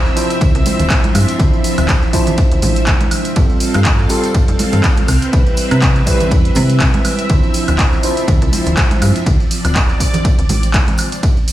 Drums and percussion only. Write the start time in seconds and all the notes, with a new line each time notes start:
0.06 tambourine
0.17 open hi-hat, tambourine
0.30 closed hi-hat, tambourine
0.41 kick, ride, tambourine
0.55 closed hi-hat, tambourine
0.66 open hi-hat, tambourine, high conga
0.79 closed hi-hat, tambourine, low conga
0.89 kick, clap, ride, tambourine
1.04 closed hi-hat, tambourine, high conga
1.15 open hi-hat, tambourine, high woodblock
1.28 closed hi-hat, tambourine
1.39 kick, ride, tambourine
1.54 tambourine
1.64 open hi-hat, tambourine
1.78 closed hi-hat, tambourine, high woodblock
1.89 kick, clap, ride, tambourine
2.03 tambourine
2.13 kick, open hi-hat, tambourine
2.27 closed hi-hat, tambourine, low conga
2.38 kick, ride, tambourine
2.52 closed hi-hat, tambourine
2.62 open hi-hat, tambourine, high conga, low conga
2.76 closed hi-hat, tambourine
2.87 kick, clap, ride, tambourine
3.00 closed hi-hat, tambourine, high conga, low conga
3.11 open hi-hat, tambourine, high woodblock
3.25 closed hi-hat, tambourine
3.36 kick, ride, tambourine
3.50 tambourine
3.60 open hi-hat, tambourine
3.74 closed hi-hat, tambourine, high woodblock
3.85 kick, clap, ride, tambourine
3.99 tambourine
4.09 open hi-hat, tambourine
4.24 closed hi-hat, tambourine
4.35 kick, ride, tambourine
4.48 closed hi-hat, tambourine
4.59 open hi-hat, tambourine, high conga
4.72 closed hi-hat, tambourine, low conga
4.84 kick, clap, ride, tambourine
4.97 closed hi-hat, tambourine, high conga
5.08 open hi-hat, tambourine, high woodblock
5.22 closed hi-hat, tambourine
5.33 kick, ride, tambourine
5.47 closed hi-hat, tambourine
5.57 open hi-hat, tambourine
5.71 closed hi-hat, tambourine, high woodblock
5.81 kick, clap, ride, tambourine
5.96 closed hi-hat, tambourine
6.07 kick, open hi-hat, tambourine
6.20 closed hi-hat, tambourine, low conga
6.31 kick, ride, tambourine
6.45 closed hi-hat, tambourine
6.55 open hi-hat, tambourine, high conga, low conga
6.69 closed hi-hat, tambourine
6.80 kick, clap, ride, tambourine
6.94 closed hi-hat, tambourine, high conga, low conga
7.05 open hi-hat, tambourine, high woodblock
7.19 closed hi-hat, tambourine
7.30 kick, ride, tambourine
7.43 tambourine
7.54 open hi-hat, tambourine
7.68 closed hi-hat, tambourine, high woodblock
7.79 kick, clap, ride, tambourine
7.93 tambourine
8.03 open hi-hat, tambourine
8.17 closed hi-hat, tambourine
8.28 kick, ride, tambourine
8.42 closed hi-hat, tambourine
8.52 open hi-hat, tambourine, high conga
8.66 closed hi-hat, tambourine, low conga
8.77 kick, clap, ride, tambourine
8.91 closed hi-hat, tambourine, high conga
9.02 open hi-hat, tambourine, high woodblock
9.16 closed hi-hat, tambourine
9.26 kick, ride, tambourine
9.40 tambourine
9.51 open hi-hat, tambourine
9.65 closed hi-hat, tambourine, high woodblock
9.76 kick, clap, ride, tambourine
9.89 tambourine
10.00 kick, open hi-hat, tambourine
10.14 closed hi-hat, tambourine, low conga
10.25 kick, ride, tambourine
10.39 closed hi-hat, tambourine
10.49 open hi-hat, tambourine, high conga, low conga
10.63 closed hi-hat, tambourine
10.74 kick, clap, ride, tambourine
10.87 closed hi-hat, tambourine, high conga, low conga
10.98 open hi-hat, tambourine, high woodblock
11.12 closed hi-hat, tambourine
11.23 kick, ride, tambourine
11.37 tambourine
11.48 open hi-hat, tambourine